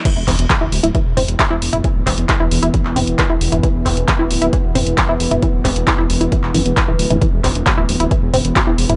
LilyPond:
<<
  \new Staff \with { instrumentName = "Synth arpeggio sound" } { \time 4/4 \key c \lydian \tempo 4 = 134 e16 r16 c'16 r16 e16 e'16 r16 e'16 e16 r16 c'16 r16 e16 e'16 r16 e'16 | e16 r16 c'16 r16 e16 e'16 r16 e'16 e16 r16 c'16 r16 e16 e'16 r16 e'16 | e16 r16 c'16 r16 e16 e'16 r16 e'16 e16 r16 c'16 r16 e16 e'16 r16 e'16 | e16 r16 c'16 r16 e16 e'16 r16 e'16 e16 r16 e16 r16 e16 e16 r16 e16 |
e16 r16 c'16 r16 fis16 e'16 r16 e'16 e16 r16 c'16 r16 fis16 e'16 r16 e'16 | }
  \new Staff \with { instrumentName = "Synth drone" } { \clef bass \time 4/4 \key c \lydian <e b>1~ | <e b>1~ | <e b>1~ | <e b>1~ |
<e b>1 | }
  \new Staff \with { instrumentName = "Detuned saw bass" } { \clef bass \time 4/4 \key c \lydian r16 e,,16 e,,16 e,,16 r16 d,,16 d,,16 d,,16 r16 e,,16 e,,16 e,,16 r16 e,,16 e,,16 e,,16 | r16 d,,16 e,,16 e,,16 r16 e,,16 e,,16 e,,16 r16 e,,16 e,,16 e,,16 r16 e,,16 e,,16 e,,16 | r16 e,,16 e,,16 e,,16 r16 d,,16 d,,16 d,,16 r16 e,,16 e,,16 e,,16 r16 e,,16 e,,16 e,,16 | r16 d,,16 e,,16 e,,16 r16 e,,16 e,,16 e,,16 r16 e,,16 fis,,16 e,,16 r16 d,,16 d,,16 d,,16 |
r16 e,,16 e,,16 e,,16 r16 d,,16 d,,16 d,,16 r16 e,,16 e,,16 e,,16 r16 e,,16 e,,16 e,,16 | }
  \new DrumStaff \with { instrumentName = "Drums" } \drummode { \time 4/4 <cymc hh bd>8 <hc hho bd>16 hh16 <hc hh bd>8 hho16 hh16 <hh bd>8 <hho toml>16 hh16 <hc hh bd>8 hho16 <hh toml>16 | <hh bd>8 <hc hho bd>16 hh16 <hc hh bd>8 hho16 hh16 <hh bd>16 hc16 <hho toml>16 hh16 <hc hh bd>8 hho16 <hh toml>16 | <hh bd>8 <hc hho bd>16 hh16 <hc hh bd>8 hho16 hh16 <hh bd>8 <hho toml>16 hh16 <hc hh bd>8 hho16 <hh toml>16 | <hh bd>8 <hc hho bd>16 hh16 <hc hh bd>8 hho16 hh16 <hh bd>16 hc16 <hho toml>16 hh16 <hc hh bd>8 hho16 <hh toml>16 |
<hh bd>8 <hc hho bd>16 hh16 <hc hh bd>8 hho16 hh16 <hh bd>8 <hho toml>16 hh16 <hc hh bd>8 hho16 <hh toml>16 | }
>>